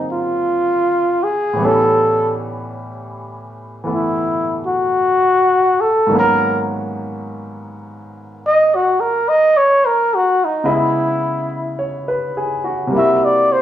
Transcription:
0.00 1.57 F#2 medium
0.00 1.58 C#3 soft
0.00 1.59 F#3 soft
0.00 1.59 G#3 medium
0.00 1.60 A#3 soft
0.00 1.60 C4 soft
0.00 1.62 F4 medium
0.00 1.61 G#4 soft
0.12 1.25 F4 medium
1.23 1.67 G#4 medium
1.53 6.10 A2 soft
1.53 3.82 E3 medium
1.59 6.13 G3 soft
1.59 3.85 B3 soft
1.65 6.15 C#4 medium
1.65 2.37 A4 medium
3.84 6.12 E3 soft
3.84 6.12 A3 soft
3.84 6.13 B3 soft
3.93 4.60 E4 medium
4.67 5.82 F#4 medium
5.81 6.16 A4 medium
6.07 10.63 G#2 medium
6.07 10.64 D#3 soft
6.11 10.65 F#3 soft
6.11 10.66 A#3 soft
6.15 10.64 B3 soft
6.15 10.68 C#4 medium
6.19 6.62 A#4 medium
8.47 8.77 D#5 medium
8.75 9.02 F#4 medium
9.00 9.31 A#4 medium
9.29 9.59 D#5 medium
9.57 9.87 C#5 medium
9.86 10.16 A#4 medium
10.15 10.46 F#4 medium
10.45 10.72 D#4 medium
10.64 12.92 C#3 medium
10.64 12.92 G#3 soft
10.64 12.92 B3 soft
10.64 12.93 E4 medium
10.64 12.92 D#5 medium
10.71 11.82 E4 medium
11.79 12.31 C#5 soft
12.08 12.56 B4 soft
12.37 12.72 G#4 soft
12.64 12.97 F#4 soft
12.87 13.62 C3 soft
12.87 13.62 G3 soft
12.92 13.62 A#3 soft
12.92 13.62 E4 soft
12.97 13.62 F#4 soft
12.97 13.26 E5 medium
13.25 13.54 D5 medium
13.53 13.62 C5 medium

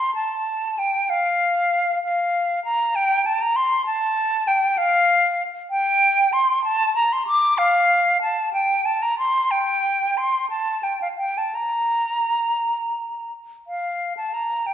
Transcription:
0.00 0.14 C6 medium
0.15 0.80 A5 medium
0.79 1.11 G5 medium
1.10 2.02 F5 medium
2.03 2.63 F5 medium
2.65 2.97 A#5 medium
2.96 3.27 G5 medium
3.26 3.43 A5 medium
3.41 3.58 A#5 medium
3.56 3.85 C6 medium
3.86 4.49 A5 loud
4.47 4.79 G5 medium
4.78 5.43 F5 medium
5.71 6.34 G5 medium
6.33 6.63 C6 medium
6.64 6.95 A5 loud
6.96 7.14 A#5 medium
7.13 7.27 C6 medium
7.27 7.59 D6 medium
7.58 8.21 F5 loud
8.22 8.53 A5 medium
8.53 8.87 G5 medium
8.85 9.04 A5 medium
9.02 9.18 A#5 medium
9.18 9.52 C6 medium
9.51 10.19 G5 medium
10.17 10.49 C6 medium
10.50 10.85 A5 medium
10.83 11.01 G5 medium
11.02 11.08 F5 medium
11.18 11.39 G5 medium
11.38 11.56 A5 medium
11.55 13.32 A#5 medium
13.68 14.14 F5 medium
14.17 14.35 A5 medium
14.34 14.68 A#5 medium
14.66 14.74 G5 medium

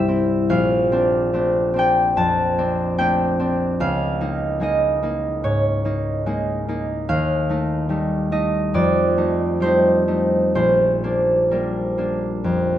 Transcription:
0.00 0.53 C2 soft
0.00 0.53 G2 soft
0.00 0.54 G3 soft
0.00 2.79 D5 medium
0.00 0.54 E5 medium
0.08 0.91 C4 soft
0.08 0.53 E4 soft
0.50 3.84 A#1 soft
0.50 3.79 F5 medium
0.92 1.33 C4 soft
0.92 1.33 D4 soft
1.33 2.98 A3 soft
1.33 1.73 C4 soft
1.33 1.75 D4 soft
1.74 2.57 C4 soft
1.74 2.57 D4 soft
1.79 2.45 G5 medium
2.17 3.84 F2 soft
2.17 3.84 A5 medium
2.58 2.98 C4 soft
2.58 2.98 D4 soft
2.98 3.84 A3 soft
2.98 3.38 C4 soft
2.98 3.38 D4 soft
2.98 4.38 G5 medium
3.40 3.84 C4 soft
3.40 3.84 D4 soft
3.80 7.12 C#2 soft
3.80 7.08 F5 medium
4.21 4.59 A#3 soft
4.21 4.60 D#4 soft
4.60 6.25 G#3 soft
4.60 5.02 A#3 soft
4.60 5.02 D#4 soft
4.60 8.31 D#5 medium
5.03 5.84 A#3 soft
5.03 5.84 D#4 soft
5.44 7.12 G#2 soft
5.44 7.12 C#5 medium
5.85 6.25 A#3 soft
5.85 6.26 D#4 soft
6.26 7.12 G#3 soft
6.26 6.67 A#3 soft
6.26 6.68 D#4 soft
6.68 8.79 A#3 soft
6.68 7.49 D#4 soft
7.09 8.79 D#2 soft
7.09 9.23 F5 medium
7.49 7.88 A3 soft
7.49 7.89 D#4 soft
7.89 9.60 G3 soft
7.89 8.31 A3 soft
7.89 8.31 D#4 soft
8.32 9.16 A3 soft
8.32 9.17 D#4 soft
8.32 10.59 D#5 medium
8.74 10.58 F2 soft
8.74 12.65 D5 medium
9.17 9.62 A3 soft
9.17 9.61 D#4 soft
9.60 11.50 G3 soft
9.60 10.07 A3 soft
9.60 10.54 C5 medium
9.65 10.07 D#4 soft
10.08 10.59 A3 soft
10.08 10.59 D#4 soft
10.55 12.78 A#1 soft
10.55 12.78 C5 medium
11.04 11.51 A#3 soft
11.04 11.51 D4 soft
11.51 12.78 G3 soft
11.51 11.96 A#3 soft
11.51 11.97 D4 soft
11.51 12.78 A#4 soft
11.98 12.78 A#3 soft
11.98 12.78 D4 soft
12.44 12.78 F2 soft

